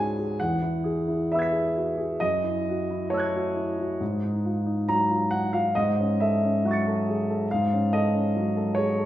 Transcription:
0.00 0.41 G#2 soft
0.00 0.41 C#4 soft
0.00 0.41 D#4 soft
0.00 0.16 F#4 soft
0.00 0.18 G#4 soft
0.00 0.41 F5 medium
0.00 0.40 F#5 medium
0.00 0.39 G#5 medium
0.18 0.40 G#4 soft
0.40 2.16 E2 soft
0.40 1.30 F#5 medium
0.61 0.98 E4 soft
0.84 1.21 G#4 soft
1.08 1.44 E4 soft
1.32 1.68 B3 soft
1.32 2.20 E5 medium
1.32 2.18 B5 soft
1.32 2.18 E6 soft
1.39 2.20 G#6 soft
1.39 2.22 B6 soft
1.51 1.87 G#4 soft
1.76 1.98 F#4 soft
1.98 2.20 G#4 soft
2.20 3.98 F#2 soft
2.20 3.11 D#5 medium
2.44 2.80 E4 soft
2.69 3.04 F#4 soft
2.90 3.25 E4 soft
3.10 3.47 A3 soft
3.10 4.00 C#5 medium
3.10 3.97 A5 soft
3.14 3.98 E6 soft
3.14 4.00 F#6 soft
3.19 4.01 G#6 soft
3.35 3.70 F#4 soft
3.56 3.78 E4 soft
3.79 4.01 F#4 soft
4.00 5.70 G#2 soft
4.24 4.58 D#4 soft
4.45 4.79 F4 soft
4.66 5.00 D#4 soft
4.89 5.23 F#3 soft
4.89 5.31 A#5 medium
5.10 5.44 F4 soft
5.31 5.53 D#4 soft
5.31 5.52 F#5 medium
5.53 5.74 F4 soft
5.53 5.74 F5 medium
5.75 7.43 G#2 soft
5.75 6.18 D#5 medium
6.00 6.33 C#4 soft
6.20 6.54 A4 soft
6.20 7.47 E5 medium
6.43 6.76 C#4 soft
6.65 6.97 F#3 soft
6.65 7.44 F#5 soft
6.65 7.45 C#6 soft
6.71 7.47 A6 soft
6.71 7.48 C#7 soft
6.87 7.19 A4 soft
7.08 7.27 G#4 soft
7.30 7.48 A4 soft
7.51 9.05 G#2 soft
7.51 7.91 F5 medium
7.73 8.04 C#4 soft
7.93 8.25 A4 soft
7.93 8.77 D#5 medium
8.14 8.46 C#4 soft
8.36 8.68 F#3 soft
8.56 8.89 A4 soft
8.75 8.97 G#4 soft
8.75 9.05 C#5 medium
8.98 9.05 A4 soft

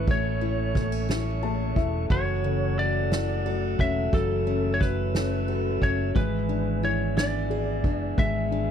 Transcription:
0.00 0.08 A3 medium
0.00 0.41 A3 medium
0.00 6.11 A3 medium
0.00 0.75 C#4 medium
0.00 0.42 E4 medium
0.00 2.06 E5 medium
0.00 2.06 C#6 medium
0.07 1.72 A1 loud
0.07 2.10 E3 medium
0.07 0.74 A3 medium
0.07 1.74 C#5 medium
0.07 kick loud
0.07 ride medium
0.41 1.08 A3 medium
0.41 1.08 E4 soft
0.41 ride medium
0.75 1.42 A3 medium
0.75 0.92 B3 medium
0.75 kick medium
0.75 snare soft
0.75 ride medium
0.92 1.76 C#4 soft
1.09 2.44 A3 medium
1.09 1.75 E4 medium
1.09 snare loud
1.09 ride medium
1.42 2.08 A3 medium
1.42 2.17 G#4 medium
1.42 1.74 A5 medium
1.42 ride soft
1.76 2.08 E1 medium
1.76 3.79 C#4 medium
1.76 2.09 E4 medium
1.76 2.08 E5 medium
1.76 kick medium
1.76 ride medium
2.09 3.75 F#1 loud
2.09 4.13 E3 medium
2.09 2.77 F#3 medium
2.09 2.79 C#5 medium
2.09 4.10 F#5 medium
2.09 6.11 E6 medium
2.09 kick loud
2.09 ride medium
2.44 3.75 C#3 medium
2.44 3.10 A3 medium
2.44 ride soft
2.78 3.44 F#3 medium
2.78 3.80 D5 medium
2.78 ride medium
3.12 4.46 A3 medium
3.12 4.43 E4 medium
3.12 snare loud
3.12 ride medium
3.45 4.11 F#3 medium
3.45 5.47 A4 medium
3.45 ride soft
3.79 4.11 E1 medium
3.79 4.45 C#4 medium
3.79 4.80 C#4 medium
3.79 4.15 E5 medium
3.79 kick medium
3.79 ride medium
4.12 5.78 F#1 loud
4.12 6.15 E3 medium
4.12 4.79 F#3 medium
4.12 4.76 A4 medium
4.12 6.13 E5 medium
4.12 kick loud
4.12 ride medium
4.46 5.14 A3 medium
4.46 5.13 C#4 medium
4.46 ride soft
4.74 4.81 C#5 medium
4.80 5.47 F#3 medium
4.80 5.81 C#4 medium
4.80 5.85 B4 medium
4.80 kick loud
4.80 snare soft
4.80 ride medium
5.14 6.22 A3 medium
5.14 5.80 C#4 medium
5.14 snare loud
5.14 ride medium
5.47 6.13 F#3 medium
5.47 6.22 A4 medium
5.47 ride soft
5.81 6.13 F#1 loud
5.81 6.14 C#4 medium
5.81 6.22 C#4 medium
5.81 6.17 C#5 medium
5.81 kick medium
5.81 ride medium
6.14 7.84 G#1 loud
6.14 8.18 E3 medium
6.14 8.14 G#3 medium
6.14 8.71 G#4 medium
6.14 6.85 B4 loud
6.14 8.71 E5 medium
6.14 kick loud
6.14 ride medium
6.49 7.16 B3 medium
6.49 7.15 D4 medium
6.49 ride soft
6.82 7.83 D4 medium
6.82 8.14 E4 medium
6.82 7.17 C#5 medium
6.82 ride medium
7.16 8.51 B3 medium
7.16 7.82 D4 medium
7.16 8.19 D5 medium
7.16 snare loud
7.16 ride medium
7.50 8.71 G#4 medium
7.50 ride soft
7.84 8.16 F#1 loud
7.84 8.50 D4 medium
7.84 8.71 D4 medium
7.84 kick medium
7.84 ride medium
8.17 8.71 G#1 medium
8.17 8.71 E3 medium
8.17 8.71 G#3 medium
8.17 8.71 E5 medium
8.17 kick loud
8.17 ride medium
8.51 8.71 B3 medium
8.51 8.71 D4 medium
8.51 ride soft

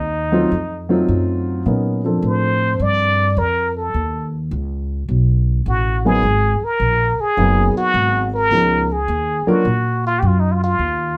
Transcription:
0.00 0.49 D#2 medium
0.00 0.91 D#4 medium
0.32 0.49 F#3 medium
0.32 0.49 A3 medium
0.32 0.49 C4 medium
0.32 0.50 D#4 medium
0.32 0.50 F4 medium
0.51 1.07 F2 medium
0.89 1.61 F#3 medium
0.89 1.61 A3 medium
0.89 1.62 C4 medium
0.89 1.62 D#4 medium
0.89 1.62 F4 medium
1.08 1.64 F#2 medium
1.66 2.21 A#2 medium
1.66 2.00 F#3 medium
1.66 2.00 B3 soft
1.66 2.01 C#4 soft
1.66 2.01 D#4 soft
1.66 2.01 A#4 medium
2.05 3.26 F3 medium
2.05 3.26 C4 soft
2.05 3.26 D4 medium
2.05 3.27 A4 medium
2.05 3.26 A#4 soft
2.22 2.78 A2 medium
2.22 2.84 C5 loud
2.80 3.35 G2 medium
2.80 3.40 D5 loud
3.37 3.92 F2 medium
3.37 3.76 A#4 medium
3.77 4.29 A4 medium
3.94 4.50 D#2 medium
4.51 5.07 C#2 medium
5.09 5.64 B1 medium
5.66 6.21 A1 medium
5.66 6.03 F#4 medium
6.05 6.21 F#3 medium
6.05 6.21 A#3 medium
6.05 6.22 B3 medium
6.05 6.22 D#4 medium
6.05 6.22 G#4 medium
6.05 6.65 G#4 loud
6.23 6.59 G#1 medium
6.61 7.22 A#4 medium
6.61 muted upright bass stroke soft
6.80 7.16 A#1 medium
7.18 7.77 G#4 loud
7.18 muted upright bass stroke soft
7.37 7.73 F#1 medium
7.37 8.25 F#3 medium
7.37 8.25 A#3 medium
7.37 8.26 B3 medium
7.37 8.26 D#4 medium
7.37 8.26 G#4 medium
7.76 8.30 F#4 loud
7.76 muted upright bass stroke soft
7.94 8.49 G#1 medium
8.35 8.94 A#4 loud
8.51 9.06 C#2 medium
8.51 8.86 F3 medium
8.51 8.86 B3 soft
8.51 8.87 C#4 soft
8.51 8.87 D#4 soft
8.51 8.87 G#4 medium
8.93 9.51 G#4 medium
9.08 9.44 D#2 medium
9.47 9.64 F#3 medium
9.47 9.64 A#3 medium
9.47 9.64 D4 medium
9.47 9.64 F4 medium
9.47 10.05 F#4 medium
9.47 9.64 A#4 medium
9.47 muted upright bass stroke soft
9.65 10.20 A#2 medium
10.06 10.21 F4 medium
10.19 10.78 F#2 medium
10.19 10.28 G4 medium
10.27 10.41 F4 medium
10.40 10.53 D#4 medium
10.52 10.62 F4 medium
10.64 11.17 F4 medium
10.79 11.17 D#2 medium

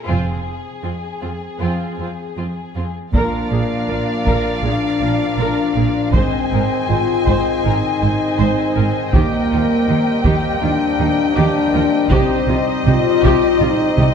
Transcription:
0.06 0.42 F1 soft
0.06 0.15 F2 soft
0.06 0.43 C4 soft
0.06 2.78 C4 soft
0.06 0.43 F4 soft
0.06 2.77 G#4 soft
0.06 2.90 G#4 soft
0.83 0.92 F2 soft
0.83 0.91 C4 soft
0.83 0.92 F4 soft
1.22 1.30 F2 soft
1.22 1.30 C4 soft
1.22 1.30 F4 soft
1.60 1.69 F2 soft
1.60 1.96 C4 soft
1.60 1.97 F4 soft
1.99 2.07 F2 soft
1.99 2.08 C4 soft
1.99 2.09 F4 soft
2.38 2.46 F2 soft
2.38 2.46 C4 soft
2.38 2.46 F4 soft
2.75 2.83 F2 soft
2.75 2.85 C4 soft
2.75 2.84 F4 soft
3.12 3.21 A#1 medium
3.12 3.22 A#2 soft
3.12 6.10 F3 soft
3.12 4.60 A#3 medium
3.12 6.10 D4 soft
3.12 6.11 F4 soft
3.12 3.49 A#4 medium
3.12 6.11 A#4 soft
3.12 6.10 D5 soft
3.12 6.10 F5 soft
3.12 6.11 F5 soft
3.12 taiko medium
3.50 3.58 A#1 soft
3.50 3.59 A#2 soft
3.50 3.60 G#4 soft
3.88 3.97 A#1 soft
3.88 3.97 A#2 soft
3.88 3.96 A#4 soft
4.26 4.34 A#1 soft
4.26 4.34 A#2 soft
4.26 4.61 A#4 medium
4.26 taiko medium
4.62 4.70 A#1 soft
4.62 4.72 A#2 soft
4.62 5.39 D4 medium
4.62 4.71 G#4 soft
5.00 5.08 A#1 soft
5.00 5.09 A#2 soft
5.00 5.10 A#4 soft
5.38 5.46 A#1 medium
5.38 5.47 A#2 medium
5.38 6.13 D4 medium
5.38 5.74 A#4 medium
5.76 5.84 A#1 soft
5.76 5.85 A#2 soft
5.76 5.85 G#4 soft
6.13 6.21 G#1 medium
6.13 6.22 G#2 medium
6.13 9.10 D#3 soft
6.13 6.90 C4 medium
6.13 9.14 C4 soft
6.13 12.12 C4 medium
6.13 9.15 G#4 soft
6.13 6.49 C5 medium
6.13 9.14 C5 medium
6.13 12.07 D#5 soft
6.13 9.13 G#5 soft
6.13 taiko medium
6.51 6.59 G#1 soft
6.51 6.60 G#2 soft
6.51 6.61 A#4 soft
6.88 6.98 G#1 soft
6.88 6.98 G#2 soft
6.88 7.63 F4 medium
6.88 6.99 C5 soft
7.27 7.35 G#1 medium
7.27 7.36 G#2 medium
7.27 7.62 C5 medium
7.27 taiko medium
7.65 7.73 G#1 soft
7.65 7.74 G#2 soft
7.65 8.97 D#4 medium
7.65 7.73 A#4 soft
8.01 8.11 G#1 soft
8.01 8.11 G#2 soft
8.01 8.09 C5 soft
8.39 8.48 G#1 medium
8.39 8.48 G#2 medium
8.39 8.74 C5 medium
8.75 8.85 G#1 soft
8.75 8.86 G#2 soft
8.75 8.83 A#4 soft
9.12 9.22 D#2 medium
9.12 9.23 D#3 medium
9.12 14.14 G3 medium
9.12 10.59 A#3 medium
9.12 12.11 A#3 medium
9.12 9.48 G4 medium
9.12 14.14 G4 medium
9.12 12.11 A#4 medium
9.12 12.07 G5 medium
9.12 taiko medium
9.51 9.60 D#2 soft
9.51 9.60 D#3 soft
9.51 9.59 F4 soft
9.87 9.96 D#2 soft
9.87 9.97 D#3 soft
9.87 9.95 G4 soft
10.24 10.33 D#2 medium
10.24 10.34 D#3 medium
10.24 10.59 G4 medium
10.24 taiko medium
10.61 10.70 D#2 soft
10.61 10.70 D#3 soft
10.61 11.35 D4 medium
10.61 10.69 F4 medium
10.98 11.06 D#2 soft
10.98 11.08 D#3 medium
10.98 11.07 G4 soft
11.35 11.44 D#2 medium
11.35 11.45 D#3 medium
11.35 12.09 D4 loud
11.35 11.70 G4 medium
11.73 11.81 D#2 soft
11.73 11.82 D#3 medium
11.73 11.82 F4 soft
12.10 12.18 C2 medium
12.10 12.19 C3 medium
12.10 14.14 C4 medium
12.10 12.88 C4 medium
12.10 14.14 D#4 medium
12.10 12.45 G4 medium
12.10 14.14 C5 medium
12.10 14.14 D#5 medium
12.10 taiko medium
12.47 12.55 C2 medium
12.47 12.57 C3 medium
12.47 12.56 F4 medium
12.85 12.93 C2 medium
12.85 12.95 C3 medium
12.85 13.61 F4 loud
12.85 12.95 G4 medium
12.85 taiko mid medium
13.23 13.32 C2 medium
13.23 13.32 C3 medium
13.23 13.58 G4 medium
13.23 taiko medium
13.60 13.69 C2 medium
13.60 13.69 C3 medium
13.60 14.14 D#4 loud
13.60 13.68 F4 medium
13.60 taiko mid medium
13.98 14.07 C2 medium
13.98 14.07 C3 medium
13.98 14.06 G4 medium
13.98 taiko mid medium

